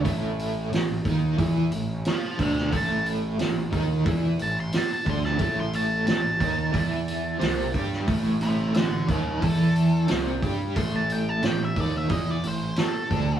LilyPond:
<<
  \new Staff \with { instrumentName = "Lead electric guitar" } { \time 4/4 \key a \minor \tempo 4 = 90 r2. <c'' a''>8 <e'' g''>8 | a''8 r2 a''16 c'''16 a''16 a''16 c'''16 a''16 | a''16 c'''16 a''8 a''2. | r8 <g' e''>8 <a' d''>8 <e' c''>8 a'4 r4 |
c'''16 a''16 g''16 a''16 g''16 e''16 d''16 e''16 dis''16 d''16 c''8 a'4 | }
  \new Staff \with { instrumentName = "Overdriven electric guitar" } { \clef bass \time 4/4 \key a \minor <a, a>4 a,8 <dis dis'>8 <e e'>8 a,8 r8 <d d'>8 | <a, a>4 a,8 <dis dis'>8 <e e'>8 a,8 r8 <d d'>8 | <a, a>4 a,8 <dis dis'>8 <e e'>4 <c c'>8 <g g'>8 | <a, a>4 a,8 <dis dis'>8 <e e'>4 <c c'>8 <g g'>8 |
<a, a>4 a,8 <dis dis'>8 <e e'>8 a,8 r8 <d d'>8 | }
  \new Staff \with { instrumentName = "Picked electric bass" } { \clef bass \time 4/4 \key a \minor a,,4 a,,8 dis,8 e,8 a,,8 r8 d,8 | a,,4 a,,8 dis,8 e,8 a,,8 r8 d,8 | a,,4 a,,8 dis,8 e,4 c,8 g,8 | a,,4 a,,8 dis,8 e,4 c,8 g,8 |
a,,4 a,,8 dis,8 e,8 a,,8 r8 d,8 | }
  \new DrumStaff \with { instrumentName = "Drums" } \drummode { \time 4/4 <hho bd>8 hho8 <hho sn>8 <hho bd>8 <hho bd>8 hho8 <hho sn>8 <hho bd>16 sn16 | <hho bd>8 hho8 <hho sn>8 <hho bd>8 <hho bd>8 hho8 <hho sn>8 <hho bd>16 sn16 | <hho bd>8 hho8 <hho sn>8 <hho bd>8 <hho bd>8 hho8 <hho sn>8 <hho bd>16 sn16 | <hho bd>8 hho8 <hho sn>8 <hho bd>8 <hho bd>8 hho8 <hho sn>8 <hho bd>8 |
<hho bd>8 hho8 <hho sn>8 <hho bd>8 <hho bd>8 hho8 <hho sn>8 <hho bd>8 | }
>>